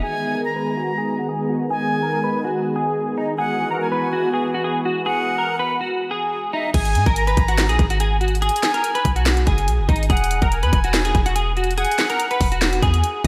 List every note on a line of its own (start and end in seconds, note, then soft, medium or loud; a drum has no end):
0.02 3.35 D#3 medium
0.02 6.70 G#3 medium
0.02 3.35 B3 medium
0.02 3.35 G#4 medium
0.02 0.33 G#4 medium
0.02 0.42 G#5 loud
0.35 0.51 A#4 medium
0.45 1.25 A#5 medium
0.56 0.72 B4 medium
0.77 0.93 F#4 medium
0.98 1.14 G#4 medium
1.19 1.26 F#4 medium
1.29 1.44 G#4 medium
1.49 1.65 F#4 medium
1.70 2.01 G#4 loud
1.70 2.50 G#5 medium
2.03 2.18 A#4 medium
2.24 2.39 B4 medium
2.45 2.74 F#4 medium
2.76 3.15 G#4 medium
3.18 3.33 D#4 medium
3.38 6.71 E3 medium
3.38 6.71 B3 medium
3.38 6.71 F#4 medium
3.38 3.69 G#4 medium
3.38 3.78 F#5 loud
3.71 3.86 A#4 medium
3.81 4.61 G#5 medium
3.92 4.07 B4 medium
4.13 4.28 F#4 medium
4.33 4.49 G#4 medium
4.54 4.62 F#4 medium
4.64 4.80 G#4 medium
4.85 5.01 F#4 medium
5.06 5.36 G#4 loud
5.06 5.86 F#5 loud
5.38 5.54 A#4 medium
5.59 5.75 B4 medium
5.81 6.09 F#4 medium
6.11 6.50 G#4 medium
6.53 6.69 D#4 medium
6.53 6.73 E5 medium
6.74 6.97 G#1 loud
6.74 7.04 G#4 loud
6.74 7.13 G#5 loud
6.74 kick loud
6.74 closed hi-hat medium
6.74 crash medium
6.85 closed hi-hat medium
6.95 7.06 G#2 loud
6.95 closed hi-hat medium
7.06 7.36 G#1 loud
7.06 7.22 A#4 medium
7.06 kick loud
7.06 closed hi-hat medium
7.16 7.96 A#5 medium
7.16 closed hi-hat medium
7.27 7.43 B4 medium
7.27 closed hi-hat soft
7.37 7.71 G#1 loud
7.37 kick medium
7.37 closed hi-hat medium
7.48 7.64 F#4 medium
7.48 closed hi-hat medium
7.58 snare loud
7.58 clap medium
7.58 closed hi-hat medium
7.69 7.78 A#1 loud
7.69 7.85 G#4 medium
7.69 closed hi-hat medium
7.79 8.50 G#1 loud
7.79 kick medium
7.79 closed hi-hat medium
7.90 7.98 F#4 medium
7.90 closed hi-hat medium
8.00 8.16 G#4 medium
8.00 closed hi-hat medium
8.21 8.37 F#4 medium
8.21 closed hi-hat soft
8.28 closed hi-hat medium
8.35 closed hi-hat medium
8.42 8.72 G#4 loud
8.42 9.22 G#5 loud
8.42 closed hi-hat medium
8.49 closed hi-hat medium
8.56 closed hi-hat medium
8.63 snare medium
8.63 clap medium
8.63 closed hi-hat medium
8.74 8.90 A#4 medium
8.74 closed hi-hat medium
8.84 closed hi-hat medium
8.95 9.11 B4 medium
8.95 closed hi-hat soft
9.05 9.45 B1 loud
9.05 kick medium
9.05 closed hi-hat medium
9.16 9.45 F#4 medium
9.16 closed hi-hat medium
9.26 snare loud
9.26 clap loud
9.26 closed hi-hat medium
9.37 closed hi-hat medium
9.47 9.69 F#1 loud
9.47 9.86 G#4 medium
9.47 kick medium
9.47 closed hi-hat medium
9.58 closed hi-hat medium
9.68 9.80 B1 loud
9.68 closed hi-hat medium
9.79 9.88 F#1 medium
9.89 10.09 G#1 loud
9.89 10.05 D#4 medium
9.89 kick loud
9.89 closed hi-hat soft
9.96 closed hi-hat medium
10.03 closed hi-hat medium
10.10 10.41 E1 loud
10.10 10.40 G#4 medium
10.10 10.49 F#5 loud
10.10 kick loud
10.10 closed hi-hat medium
10.17 closed hi-hat medium
10.24 closed hi-hat medium
10.31 closed hi-hat medium
10.42 10.64 E1 loud
10.42 10.58 A#4 medium
10.42 kick loud
10.42 closed hi-hat medium
10.52 11.32 G#5 medium
10.52 closed hi-hat medium
10.63 10.72 E2 loud
10.63 10.79 B4 medium
10.63 closed hi-hat soft
10.73 11.13 E1 loud
10.73 kick medium
10.73 closed hi-hat medium
10.84 11.00 F#4 medium
10.84 closed hi-hat medium
10.94 snare loud
10.94 clap medium
10.94 closed hi-hat medium
11.05 11.21 G#4 medium
11.05 closed hi-hat medium
11.15 11.86 E1 loud
11.15 kick medium
11.15 closed hi-hat medium
11.26 11.33 F#4 medium
11.26 closed hi-hat medium
11.36 11.51 G#4 medium
11.36 closed hi-hat medium
11.57 11.73 F#4 medium
11.57 closed hi-hat soft
11.64 closed hi-hat medium
11.71 closed hi-hat medium
11.77 12.08 G#4 loud
11.77 12.57 F#5 loud
11.77 closed hi-hat medium
11.85 closed hi-hat medium
11.92 closed hi-hat medium
11.99 snare medium
11.99 clap medium
11.99 closed hi-hat medium
12.10 12.25 A#4 medium
12.10 closed hi-hat medium
12.20 closed hi-hat medium
12.31 12.46 B4 medium
12.31 closed hi-hat soft
12.41 12.81 E1 loud
12.41 kick medium
12.41 open hi-hat medium
12.52 12.81 F#4 medium
12.52 closed hi-hat medium
12.62 snare loud
12.62 clap medium
12.62 closed hi-hat medium
12.73 closed hi-hat medium
12.82 13.03 E2 loud
12.82 13.22 G#4 medium
12.82 kick medium
12.82 closed hi-hat medium
12.94 closed hi-hat medium
13.04 closed hi-hat medium